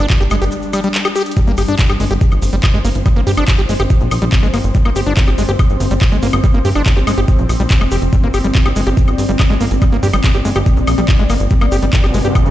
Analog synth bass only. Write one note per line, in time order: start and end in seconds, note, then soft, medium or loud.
0.20 0.28 G1 medium
0.31 0.38 G1 loud
0.42 0.49 G1 loud
1.47 1.54 G1 medium
1.58 1.65 G1 loud
1.68 1.76 G1 medium
1.90 1.97 G1 medium
2.00 2.07 G1 loud
2.11 2.18 G1 medium
2.32 2.39 G1 medium
2.42 2.50 G1 loud
2.53 2.60 G1 medium
2.74 2.81 G1 medium
2.85 2.92 G1 loud
2.95 3.02 G1 medium
3.16 3.23 G1 medium
3.27 3.34 G2 loud
3.37 3.45 G1 loud
3.59 3.66 G1 medium
3.69 3.76 G1 medium
3.80 3.87 G1 medium
4.01 4.08 A#1 medium
4.11 4.19 A#1 loud
4.22 4.29 A#1 medium
4.43 4.50 G1 medium
4.54 4.61 G1 loud
4.64 4.71 G1 medium
4.85 4.92 G1 medium
4.96 5.03 G1 loud
5.06 5.14 G1 medium
5.28 5.35 G1 medium
5.38 5.45 G1 loud
5.49 5.56 G1 medium
5.70 5.77 G1 medium
5.80 5.88 G1 loud
5.91 5.98 G1 medium
6.12 6.19 G1 medium
6.23 6.30 G1 loud
6.33 6.40 G1 medium
6.54 6.61 G1 medium
6.65 6.72 G2 loud
6.75 6.83 G1 medium
6.97 7.04 G1 medium
7.07 7.14 G1 loud
7.18 7.25 G1 medium
7.39 7.46 A#1 medium
7.49 7.57 A#1 loud
7.60 7.67 A#1 medium
7.81 7.88 F1 medium
7.92 7.99 F1 loud
8.02 8.09 F1 medium
8.23 8.31 G1 medium
8.34 8.41 G1 loud
8.44 8.52 G1 medium
8.65 8.73 G1 medium
8.76 8.83 G1 medium
8.87 8.94 G1 medium
9.08 9.15 G1 medium
9.18 9.26 G1 loud
9.29 9.36 G1 medium
9.50 9.57 G1 medium
9.61 9.68 G1 loud
9.71 9.78 G1 medium
9.92 10.00 G1 medium
10.03 10.10 G2 loud
10.13 10.21 G1 loud
10.35 10.42 G1 medium
10.45 10.52 G1 loud
10.56 10.63 G1 loud
10.77 10.84 A#1 medium
10.87 10.95 A#1 loud
10.98 11.05 A#1 medium
11.19 11.26 G1 medium
11.30 11.37 G1 loud
11.40 11.47 G1 loud
11.61 11.69 G1 medium
11.72 11.79 G1 loud
11.83 11.90 G1 medium
12.04 12.11 G1 medium
12.14 12.21 G1 medium
12.25 12.32 G1 medium
12.46 12.51 G1 medium